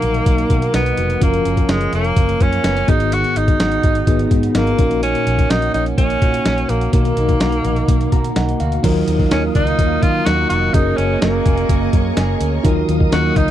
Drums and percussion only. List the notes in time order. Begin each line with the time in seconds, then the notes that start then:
0.02 closed hi-hat
0.14 closed hi-hat
0.26 kick, closed hi-hat
0.38 closed hi-hat
0.50 kick, closed hi-hat
0.62 closed hi-hat
0.74 snare, closed hi-hat
0.86 closed hi-hat
0.97 closed hi-hat
1.10 closed hi-hat
1.22 kick, closed hi-hat
1.34 closed hi-hat
1.45 closed hi-hat
1.57 kick, closed hi-hat
1.69 snare, closed hi-hat
1.81 closed hi-hat
1.93 closed hi-hat
2.04 closed hi-hat
2.16 kick, closed hi-hat
2.29 closed hi-hat
2.40 kick, closed hi-hat
2.53 closed hi-hat
2.64 snare, closed hi-hat
2.77 closed hi-hat
2.88 kick, closed hi-hat
3.00 closed hi-hat
3.12 closed hi-hat
3.24 closed hi-hat
3.36 closed hi-hat
3.48 kick, closed hi-hat
3.60 snare, closed hi-hat
3.72 closed hi-hat
3.83 kick, closed hi-hat
3.95 closed hi-hat
4.07 kick, closed hi-hat
4.19 closed hi-hat
4.31 kick, closed hi-hat
4.43 closed hi-hat
4.55 snare, closed hi-hat
4.67 closed hi-hat
4.79 kick, closed hi-hat
4.91 closed hi-hat
5.03 closed hi-hat
5.15 closed hi-hat
5.27 closed hi-hat
5.38 kick, closed hi-hat
5.50 snare, closed hi-hat
5.62 closed hi-hat
5.74 closed hi-hat
5.86 closed hi-hat
5.98 kick, closed hi-hat
6.10 closed hi-hat
6.22 kick, closed hi-hat
6.34 closed hi-hat
6.45 snare, closed hi-hat
6.58 closed hi-hat
6.69 closed hi-hat
6.81 closed hi-hat
6.93 kick, closed hi-hat
7.05 closed hi-hat
7.17 closed hi-hat
7.29 kick, closed hi-hat
7.40 snare, closed hi-hat
7.52 closed hi-hat
7.65 closed hi-hat
7.76 closed hi-hat
7.88 kick, closed hi-hat
8.01 closed hi-hat
8.12 kick, closed hi-hat
8.24 closed hi-hat
8.36 snare, closed hi-hat
8.49 closed hi-hat
8.60 closed hi-hat
8.72 closed hi-hat
8.84 kick, closed hi-hat, crash
9.08 closed hi-hat
9.19 kick
9.31 snare, closed hi-hat
9.55 kick, closed hi-hat
9.67 closed hi-hat
9.79 kick, closed hi-hat
10.03 kick, closed hi-hat
10.26 snare, closed hi-hat
10.50 closed hi-hat
10.74 kick, closed hi-hat
10.98 closed hi-hat
11.22 snare, closed hi-hat
11.46 kick, closed hi-hat
11.57 closed hi-hat
11.69 kick, closed hi-hat
11.93 kick, closed hi-hat
12.17 snare, closed hi-hat
12.41 closed hi-hat
12.65 kick, closed hi-hat
12.89 closed hi-hat
13.00 kick
13.12 snare, closed hi-hat
13.36 kick, closed hi-hat